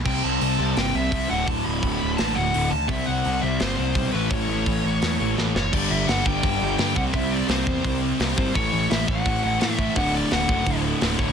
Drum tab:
CC |x-------|--------|--------|--------|
HH |--o-o-o-|o-o-o-o-|o-o-o-o-|o-o-o---|
SD |----o---|----o---|----o---|----o-oo|
BD |o-----o-|o-o-----|o-----o-|o-o-----|

CC |x-------|--------|--------|--------|
HH |--o-o-o-|o-o-o-o-|o-o-o-o-|o-o-o-o-|
SD |--o---o-|--o---o-|--o---o-|--o---o-|
BD |o--oo--o|o--oo--o|o--oo--o|o--oo--o|